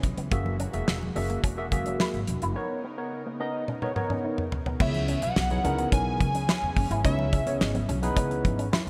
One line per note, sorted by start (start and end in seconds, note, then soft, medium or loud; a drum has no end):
0.00 0.15 B1 medium
0.00 0.28 C#3 medium
0.00 2.52 E3 medium
0.00 0.28 B3 medium
0.00 0.30 C#4 medium
0.00 kick medium
0.00 closed hi-hat medium
0.05 muted conga soft
0.05 high conga soft
0.17 0.29 C#2 medium
0.17 0.27 B3 medium
0.17 closed hi-hat medium
0.31 0.65 F#1 loud
0.31 2.54 G#3 medium
0.31 0.55 A#3 medium
0.31 0.41 A#3 medium
0.31 2.54 A#3 medium
0.31 0.55 F#4 medium
0.31 2.54 F#4 medium
0.31 0.55 G#4 medium
0.31 0.55 E5 medium
0.31 kick loud
0.31 closed hi-hat medium
0.31 low conga medium
0.46 high conga medium
0.60 0.69 C#4 medium
0.60 closed hi-hat medium
0.60 muted conga soft
0.73 0.85 E1 medium
0.73 0.97 A#3 medium
0.73 0.97 F#4 medium
0.73 0.97 G#4 medium
0.73 0.97 E5 medium
0.73 muted clean electric guitar stroke soft
0.73 closed hi-hat medium
0.88 1.10 E1 medium
0.88 muted clean electric guitar stroke soft
0.88 snare loud
1.03 high conga medium
1.15 1.38 F#1 medium
1.15 1.39 A#3 medium
1.15 1.25 C#4 medium
1.15 1.39 F#4 medium
1.15 1.39 G#4 medium
1.15 1.39 E5 loud
1.15 open hi-hat medium
1.15 high conga medium
1.15 low conga medium
1.30 1.39 A#3 medium
1.30 closed hi-hat soft
1.44 1.72 E1 medium
1.44 1.53 C#4 medium
1.44 kick loud
1.44 closed hi-hat loud
1.44 muted conga soft
1.57 1.65 A#3 medium
1.57 1.65 F#4 medium
1.57 1.66 G#4 medium
1.57 1.66 E5 loud
1.57 muted clean electric guitar stroke soft
1.71 1.94 F#1 medium
1.71 2.19 A#3 medium
1.71 2.19 F#4 medium
1.71 2.19 G#4 medium
1.71 2.19 E5 loud
1.71 kick medium
1.71 closed hi-hat medium
1.71 muted conga soft
1.71 high conga medium
1.86 1.95 C#4 medium
1.86 closed hi-hat medium
2.00 2.09 E4 medium
2.00 snare loud
2.00 high conga medium
2.14 2.25 G#1 medium
2.14 closed hi-hat soft
2.27 2.39 E1 medium
2.27 muted clean electric guitar stroke soft
2.27 closed hi-hat medium
2.27 muted conga soft
2.27 high conga soft
2.42 2.53 F#1 medium
2.42 2.51 E4 medium
2.42 closed hi-hat medium
2.55 4.78 C#3 medium
2.55 2.79 B3 medium
2.55 2.65 B3 medium
2.55 4.78 B3 medium
2.55 2.79 D#4 medium
2.55 4.78 D#4 medium
2.55 2.79 A#4 medium
2.55 4.78 A#4 medium
2.55 2.79 C#5 loud
2.70 muted clean electric guitar stroke soft
2.84 2.93 B3 medium
2.97 3.21 B3 medium
2.97 3.21 D#4 medium
2.97 3.21 A#4 medium
2.97 3.22 C#5 medium
3.12 muted clean electric guitar stroke soft
3.26 3.35 A#3 medium
3.40 3.63 B3 medium
3.40 3.49 C#4 medium
3.40 3.63 D#4 medium
3.40 3.64 A#4 medium
3.40 3.64 D#5 loud
3.68 3.77 C#4 medium
3.68 high tom medium
3.82 3.90 B3 medium
3.82 3.90 D#4 medium
3.82 3.90 A#4 medium
3.82 3.90 C#5 loud
3.82 muted clean electric guitar stroke soft
3.82 high tom medium
3.95 4.43 B3 medium
3.95 4.43 D#4 medium
3.95 4.43 A#4 medium
3.95 4.43 C#5 loud
3.95 mid tom medium
4.10 4.19 C#4 medium
4.10 mid tom medium
4.24 4.33 D#4 medium
4.38 muted clean electric guitar stroke soft
4.38 mid tom medium
4.52 floor tom medium
4.66 4.75 B3 medium
4.66 floor tom medium
4.80 5.13 C#2 loud
4.80 8.90 C#3 medium
4.80 8.90 E3 medium
4.80 5.19 B3 medium
4.80 7.02 B3 medium
4.80 4.89 B3 loud
4.80 5.19 C#4 medium
4.80 5.19 E4 medium
4.80 5.19 G#4 medium
4.80 5.19 C#5 medium
4.80 5.20 E5 loud
4.80 kick loud
4.80 crash loud
4.80 muted conga soft
4.80 low conga medium
4.94 closed hi-hat soft
4.94 high conga medium
5.08 5.17 C#4 medium
5.08 closed hi-hat medium
5.08 muted conga soft
5.22 5.33 B1 loud
5.22 5.89 F#5 loud
5.22 muted clean electric guitar stroke soft
5.22 closed hi-hat medium
5.36 5.59 B1 loud
5.36 muted clean electric guitar stroke soft
5.36 snare loud
5.36 muted conga soft
5.50 5.58 B3 medium
5.50 5.58 D#4 medium
5.50 5.58 E4 medium
5.50 5.58 G#4 medium
5.50 5.58 C#5 medium
5.50 closed hi-hat soft
5.50 high conga medium
5.64 5.87 C#2 loud
5.64 6.27 B3 medium
5.64 5.74 C#4 medium
5.64 6.27 D#4 medium
5.64 6.27 E4 medium
5.64 6.27 G#4 medium
5.64 6.27 A#4 medium
5.64 closed hi-hat medium
5.64 muted conga soft
5.64 high conga medium
5.64 low conga medium
5.78 5.88 B3 medium
5.78 closed hi-hat soft
5.92 6.21 B1 medium
5.92 6.02 C#4 medium
5.92 7.01 G#5 loud
5.92 kick loud
5.92 closed hi-hat loud
5.92 muted conga soft
6.07 muted clean electric guitar stroke soft
6.20 6.43 C#2 medium
6.20 kick medium
6.20 closed hi-hat medium
6.20 muted conga soft
6.20 high conga medium
6.35 6.44 C#4 medium
6.35 closed hi-hat medium
6.48 6.58 E4 medium
6.48 snare loud
6.48 high conga medium
6.63 6.74 E2 medium
6.76 6.88 F#1 medium
6.76 muted clean electric guitar stroke soft
6.76 kick loud
6.76 open hi-hat medium
6.76 high conga medium
6.91 7.02 G#1 medium
6.91 7.00 E4 medium
6.91 closed hi-hat medium
7.04 7.38 C#2 loud
7.04 7.28 B3 medium
7.04 7.14 C#4 medium
7.04 7.28 D#4 medium
7.04 7.28 E4 medium
7.04 7.28 G#4 medium
7.04 7.28 C#5 medium
7.04 7.60 E5 loud
7.04 kick loud
7.04 closed hi-hat medium
7.04 low conga medium
7.19 muted clean electric guitar stroke soft
7.19 high conga medium
7.33 7.42 C#4 medium
7.33 kick medium
7.33 closed hi-hat medium
7.33 muted conga soft
7.46 7.58 C#2 loud
7.46 7.78 B3 medium
7.46 7.78 C#4 medium
7.46 7.78 E4 medium
7.46 7.78 G#4 medium
7.46 7.78 C#5 medium
7.46 closed hi-hat medium
7.60 7.83 G#1 medium
7.60 7.85 D#5 loud
7.60 muted clean electric guitar stroke soft
7.60 snare loud
7.60 muted conga soft
7.75 7.84 B3 medium
7.75 closed hi-hat soft
7.75 high conga medium
7.89 8.11 B1 loud
7.89 7.98 C#4 medium
7.89 closed hi-hat medium
7.89 muted conga soft
7.89 high conga medium
7.89 low conga medium
8.02 8.65 B3 medium
8.02 8.65 D#4 medium
8.02 8.65 E4 medium
8.02 8.66 G#4 medium
8.02 8.66 B4 loud
8.02 closed hi-hat medium
8.17 8.39 C#2 loud
8.17 8.26 C#4 medium
8.17 kick loud
8.17 closed hi-hat loud
8.17 muted conga soft
8.30 muted clean electric guitar stroke soft
8.30 closed hi-hat soft
8.45 8.67 G#1 medium
8.45 kick medium
8.45 closed hi-hat medium
8.45 high conga medium
8.58 8.68 C#4 medium
8.58 closed hi-hat medium
8.73 8.82 E4 medium
8.73 snare loud
8.73 muted conga soft
8.73 high conga medium
8.87 muted clean electric guitar stroke soft